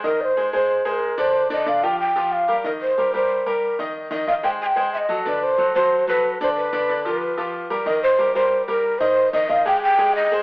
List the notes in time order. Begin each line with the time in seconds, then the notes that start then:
0.03 D#3 D#4 A#4 D#5
0.21 C5 D5
0.37 G#3 G#4 C5
0.53 G#3 G#4 C5
0.85 G#3 G#4 B4 C5
0.90 A#4
1.18 D3 D4 C5 D5
1.50 D3 D4 D5 D#5
1.66 D3 D4 D5 F5
1.83 F3 F4 G4 G5
2.00 G5
2.16 F3 F4 G4
2.32 F5
2.48 G3 G4 A#4
2.64 D#3 D#4 A#4 D#5
2.81 C5
2.98 G3 G4 A#4
3.14 G3 G4 A#4 C5
3.46 G3 G4 A#4
3.79 D#3 D#4 D#5
4.11 D#3 D#4 D#5
4.27 D#3 D#4 D#5 F5
4.43 G#3 G#4 C5 G5
4.62 G#5
4.66 G5
4.76 G#3 G#4 C5
4.93 E5
4.98 D#5
5.09 F#3 F#4 A4
5.25 D3 D4 B4 D5
5.43 C5
5.58 F#3 F#4 A4
5.75 F#3 F#4 A4 C5
6.07 F#3 F#4 A4 B4
6.41 D3 D4 C5 D5
6.57 B4
6.73 D3 D4 D5
6.89 D3 D4 D5
7.05 F3 F4 G4 B4
7.37 F3 F4 G4
7.70 G3 G4 A#4
7.86 D#3 D#4 A#4 D#5
8.03 C5
8.18 G3 G4 A#4
8.35 G3 G4 A#4 C5
8.67 G3 G4 A#4
8.99 D#3 D#4 C5 D#5
9.33 D#3 D#4 D#5
9.49 D#3 D#4 D#5 F5
9.65 G#3 G4 G#4 G5
9.83 G5
9.98 G#3 G4 G#4
10.15 D#5
10.31 G#3 G#4 C5